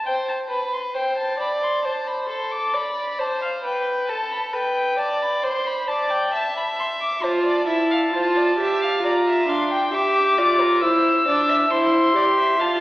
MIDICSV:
0, 0, Header, 1, 4, 480
1, 0, Start_track
1, 0, Tempo, 896861
1, 29, Time_signature, 4, 2, 24, 8
1, 6853, End_track
2, 0, Start_track
2, 0, Title_t, "Violin"
2, 0, Program_c, 0, 40
2, 32, Note_on_c, 0, 79, 50
2, 75, Note_off_c, 0, 79, 0
2, 153, Note_on_c, 0, 81, 49
2, 196, Note_off_c, 0, 81, 0
2, 271, Note_on_c, 0, 83, 50
2, 388, Note_off_c, 0, 83, 0
2, 393, Note_on_c, 0, 84, 50
2, 436, Note_off_c, 0, 84, 0
2, 510, Note_on_c, 0, 79, 51
2, 627, Note_off_c, 0, 79, 0
2, 631, Note_on_c, 0, 81, 55
2, 747, Note_off_c, 0, 81, 0
2, 751, Note_on_c, 0, 83, 54
2, 794, Note_off_c, 0, 83, 0
2, 868, Note_on_c, 0, 84, 50
2, 984, Note_off_c, 0, 84, 0
2, 988, Note_on_c, 0, 81, 51
2, 1111, Note_on_c, 0, 83, 52
2, 1119, Note_off_c, 0, 81, 0
2, 1224, Note_off_c, 0, 83, 0
2, 1227, Note_on_c, 0, 84, 50
2, 1346, Note_on_c, 0, 86, 55
2, 1354, Note_off_c, 0, 84, 0
2, 1474, Note_on_c, 0, 83, 61
2, 1482, Note_off_c, 0, 86, 0
2, 1716, Note_on_c, 0, 81, 53
2, 1724, Note_off_c, 0, 83, 0
2, 1828, Note_off_c, 0, 81, 0
2, 1831, Note_on_c, 0, 77, 53
2, 1874, Note_off_c, 0, 77, 0
2, 1947, Note_on_c, 0, 79, 56
2, 2184, Note_off_c, 0, 79, 0
2, 2190, Note_on_c, 0, 81, 53
2, 2306, Note_off_c, 0, 81, 0
2, 2309, Note_on_c, 0, 83, 54
2, 2352, Note_off_c, 0, 83, 0
2, 2429, Note_on_c, 0, 79, 55
2, 2669, Note_on_c, 0, 81, 60
2, 2677, Note_off_c, 0, 79, 0
2, 2794, Note_on_c, 0, 83, 52
2, 2802, Note_off_c, 0, 81, 0
2, 2908, Note_off_c, 0, 83, 0
2, 2911, Note_on_c, 0, 84, 59
2, 3033, Note_on_c, 0, 83, 59
2, 3041, Note_off_c, 0, 84, 0
2, 3148, Note_on_c, 0, 81, 55
2, 3156, Note_off_c, 0, 83, 0
2, 3265, Note_on_c, 0, 79, 58
2, 3273, Note_off_c, 0, 81, 0
2, 3388, Note_off_c, 0, 79, 0
2, 3392, Note_on_c, 0, 81, 61
2, 3509, Note_off_c, 0, 81, 0
2, 3515, Note_on_c, 0, 83, 56
2, 3557, Note_off_c, 0, 83, 0
2, 3634, Note_on_c, 0, 84, 54
2, 3677, Note_off_c, 0, 84, 0
2, 3755, Note_on_c, 0, 86, 58
2, 3867, Note_on_c, 0, 81, 62
2, 3875, Note_off_c, 0, 86, 0
2, 4832, Note_off_c, 0, 81, 0
2, 4835, Note_on_c, 0, 82, 60
2, 5071, Note_off_c, 0, 82, 0
2, 5078, Note_on_c, 0, 84, 59
2, 5319, Note_on_c, 0, 86, 70
2, 5327, Note_off_c, 0, 84, 0
2, 5790, Note_off_c, 0, 86, 0
2, 5793, Note_on_c, 0, 88, 67
2, 6263, Note_on_c, 0, 84, 75
2, 6271, Note_off_c, 0, 88, 0
2, 6748, Note_on_c, 0, 81, 68
2, 6756, Note_off_c, 0, 84, 0
2, 6853, Note_off_c, 0, 81, 0
2, 6853, End_track
3, 0, Start_track
3, 0, Title_t, "Violin"
3, 0, Program_c, 1, 40
3, 27, Note_on_c, 1, 72, 65
3, 252, Note_off_c, 1, 72, 0
3, 267, Note_on_c, 1, 71, 64
3, 507, Note_on_c, 1, 72, 57
3, 515, Note_off_c, 1, 71, 0
3, 742, Note_off_c, 1, 72, 0
3, 745, Note_on_c, 1, 74, 67
3, 987, Note_on_c, 1, 72, 67
3, 996, Note_off_c, 1, 74, 0
3, 1224, Note_off_c, 1, 72, 0
3, 1227, Note_on_c, 1, 69, 58
3, 1467, Note_on_c, 1, 74, 64
3, 1475, Note_off_c, 1, 69, 0
3, 1707, Note_on_c, 1, 72, 66
3, 1715, Note_off_c, 1, 74, 0
3, 1946, Note_off_c, 1, 72, 0
3, 1949, Note_on_c, 1, 71, 63
3, 2189, Note_on_c, 1, 69, 69
3, 2197, Note_off_c, 1, 71, 0
3, 2425, Note_on_c, 1, 71, 65
3, 2434, Note_off_c, 1, 69, 0
3, 2667, Note_off_c, 1, 71, 0
3, 2670, Note_on_c, 1, 74, 71
3, 2910, Note_on_c, 1, 72, 72
3, 2918, Note_off_c, 1, 74, 0
3, 3151, Note_off_c, 1, 72, 0
3, 3153, Note_on_c, 1, 74, 67
3, 3388, Note_off_c, 1, 74, 0
3, 3393, Note_on_c, 1, 76, 74
3, 3873, Note_on_c, 1, 72, 62
3, 3881, Note_off_c, 1, 76, 0
3, 3987, Note_off_c, 1, 72, 0
3, 3990, Note_on_c, 1, 74, 57
3, 4106, Note_off_c, 1, 74, 0
3, 4109, Note_on_c, 1, 76, 61
3, 4228, Note_off_c, 1, 76, 0
3, 4232, Note_on_c, 1, 77, 59
3, 4274, Note_off_c, 1, 77, 0
3, 4357, Note_on_c, 1, 72, 55
3, 4479, Note_on_c, 1, 74, 53
3, 4487, Note_off_c, 1, 72, 0
3, 4594, Note_off_c, 1, 74, 0
3, 4598, Note_on_c, 1, 76, 62
3, 4719, Note_on_c, 1, 77, 57
3, 4727, Note_off_c, 1, 76, 0
3, 4837, Note_off_c, 1, 77, 0
3, 4843, Note_on_c, 1, 74, 62
3, 4885, Note_off_c, 1, 74, 0
3, 4962, Note_on_c, 1, 76, 55
3, 5078, Note_on_c, 1, 77, 58
3, 5086, Note_off_c, 1, 76, 0
3, 5198, Note_off_c, 1, 77, 0
3, 5202, Note_on_c, 1, 79, 60
3, 5317, Note_off_c, 1, 79, 0
3, 5319, Note_on_c, 1, 76, 65
3, 5556, Note_on_c, 1, 74, 61
3, 5564, Note_off_c, 1, 76, 0
3, 5676, Note_on_c, 1, 70, 59
3, 5684, Note_off_c, 1, 74, 0
3, 5794, Note_off_c, 1, 70, 0
3, 5799, Note_on_c, 1, 72, 68
3, 6028, Note_off_c, 1, 72, 0
3, 6034, Note_on_c, 1, 74, 69
3, 6151, Note_on_c, 1, 76, 61
3, 6159, Note_off_c, 1, 74, 0
3, 6268, Note_off_c, 1, 76, 0
3, 6271, Note_on_c, 1, 72, 58
3, 6504, Note_off_c, 1, 72, 0
3, 6506, Note_on_c, 1, 74, 66
3, 6549, Note_off_c, 1, 74, 0
3, 6623, Note_on_c, 1, 76, 61
3, 6742, Note_on_c, 1, 77, 68
3, 6750, Note_off_c, 1, 76, 0
3, 6853, Note_off_c, 1, 77, 0
3, 6853, End_track
4, 0, Start_track
4, 0, Title_t, "Viola"
4, 0, Program_c, 2, 41
4, 3862, Note_on_c, 2, 65, 74
4, 4089, Note_off_c, 2, 65, 0
4, 4106, Note_on_c, 2, 64, 65
4, 4345, Note_off_c, 2, 64, 0
4, 4350, Note_on_c, 2, 65, 73
4, 4588, Note_off_c, 2, 65, 0
4, 4592, Note_on_c, 2, 67, 73
4, 4825, Note_off_c, 2, 67, 0
4, 4829, Note_on_c, 2, 65, 78
4, 5068, Note_off_c, 2, 65, 0
4, 5075, Note_on_c, 2, 62, 73
4, 5311, Note_off_c, 2, 62, 0
4, 5315, Note_on_c, 2, 67, 79
4, 5555, Note_on_c, 2, 65, 72
4, 5563, Note_off_c, 2, 67, 0
4, 5791, Note_on_c, 2, 64, 75
4, 5799, Note_off_c, 2, 65, 0
4, 6029, Note_off_c, 2, 64, 0
4, 6035, Note_on_c, 2, 62, 71
4, 6263, Note_off_c, 2, 62, 0
4, 6266, Note_on_c, 2, 64, 86
4, 6501, Note_off_c, 2, 64, 0
4, 6503, Note_on_c, 2, 67, 74
4, 6739, Note_off_c, 2, 67, 0
4, 6746, Note_on_c, 2, 65, 80
4, 6853, Note_off_c, 2, 65, 0
4, 6853, End_track
0, 0, End_of_file